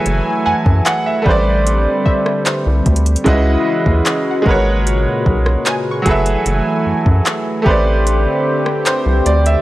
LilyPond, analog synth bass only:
\new Staff \with { instrumentName = "Analog synth bass" } { \clef bass \time 4/4 \key a \lydian \tempo 4 = 75 fis,,16 r16 fis,16 fis,16 r8 a,,4 r8. c,16 d,8 | cis,8 r16 dis,16 r8 gis,,4 b,,8 r8 fis,,8 | fis,,16 r16 fis,16 fis,16 r8 a,,4 r8. c,16 d,8 | }